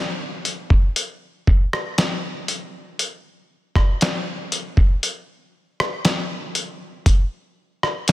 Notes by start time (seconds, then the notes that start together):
0.45 closed hi-hat
0.70 kick
0.96 closed hi-hat
1.47 kick
1.73 cross-stick
1.98 snare, closed hi-hat
2.48 closed hi-hat
2.99 closed hi-hat
3.75 kick, cross-stick
4.01 snare, closed hi-hat
4.52 closed hi-hat
4.77 kick
5.03 closed hi-hat
5.80 cross-stick
6.05 snare, closed hi-hat
6.55 closed hi-hat
7.06 kick, closed hi-hat
7.83 cross-stick
8.08 snare, closed hi-hat